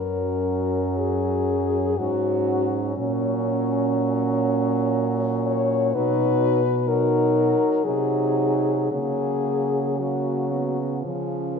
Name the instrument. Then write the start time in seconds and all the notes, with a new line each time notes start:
french horn
Already playing: F#2 F#3 C#4 A#4
0.98 G#4
1.98 G#2 F#3 C#4 F#4
2.96 A#2 F#3 C#4
5.46 C#5
5.95 B2 F#3 D#4 B4
6.87 F#3 D#4 A#4
7.84 C3 F#3 D#4 G#4
8.91 C#3 F#3 A#3 G#4
9.99 F#3 A#3 F#4
10.51 B3
11.03 C#3 F3 C#4